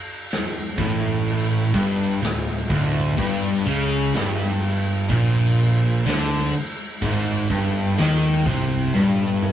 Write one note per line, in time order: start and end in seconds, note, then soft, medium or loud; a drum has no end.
0.30 snare loud
0.30 crash medium
0.78 1.70 A1 loud
0.78 1.73 A2 loud
0.78 kick loud
0.78 crash medium
1.26 crash medium
1.74 2.19 G1 loud
1.74 2.21 G2 loud
1.74 kick loud
1.74 crash medium
2.22 2.67 D1 medium
2.22 2.61 D2 medium
2.22 snare loud
2.22 crash medium
2.49 snare soft
2.70 3.15 D1 medium
2.70 3.17 D2 loud
2.70 kick loud
2.70 crash medium
3.18 3.63 G1 loud
3.18 3.65 G2 loud
3.18 kick loud
3.18 crash medium
3.65 4.10 C#2 loud
3.65 4.13 C#3 loud
3.65 crash medium
4.14 5.06 G1 loud
4.14 5.09 G2 loud
4.14 snare loud
4.14 crash medium
4.62 crash medium
5.10 6.02 A#1 loud
5.10 6.05 A#2 loud
5.10 kick loud
5.10 crash medium
5.58 crash medium
6.06 6.51 D2 loud
6.06 6.52 D3 loud
6.06 snare loud
6.06 crash medium
6.54 crash medium
7.02 7.47 G#1 loud
7.02 7.49 G#2 loud
7.02 kick loud
7.02 crash medium
7.50 7.95 G1 loud
7.50 7.97 G2 loud
7.50 kick loud
7.50 crash medium
7.98 8.43 D#2 medium
7.98 8.45 D#3 loud
7.98 snare loud
7.98 crash medium
8.46 8.91 C2 loud
8.46 8.93 C3 loud
8.46 kick loud
8.46 crash medium
8.94 9.52 G1 loud
8.94 9.52 G2 loud
8.94 high tom medium
9.43 mid tom medium